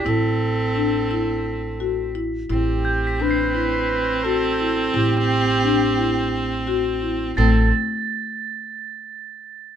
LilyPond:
<<
  \new Staff \with { instrumentName = "Crotales" } { \time 7/8 \key a \dorian \tempo 4 = 86 b'''8 r2. | r8 g'''16 b'''16 c''''4. r4 | r2. r8 | a'''2.~ a'''8 | }
  \new Staff \with { instrumentName = "Flugelhorn" } { \time 7/8 \key a \dorian a'2. r8 | g'4 b'4. a'4 | g'2~ g'8 r4 | a'8 r2. | }
  \new Staff \with { instrumentName = "Marimba" } { \time 7/8 \key a \dorian e'4 d'8 e'4 fis'8 e'8 | e'4 d'8 e'4 fis'8 e'8 | e'4 d'8 e'4 fis'8 e'8 | a8 r2. | }
  \new Staff \with { instrumentName = "Viola" } { \time 7/8 \key a \dorian c'2. r8 | c'2.~ c'8~ | c'2.~ c'8 | c'8 r2. | }
  \new Staff \with { instrumentName = "Upright bass" } { \clef bass \time 7/8 \key a \dorian a,,2.~ a,,8 | a,,2.~ a,,8 | a,,2.~ a,,8 | a,,8 r2. | }
>>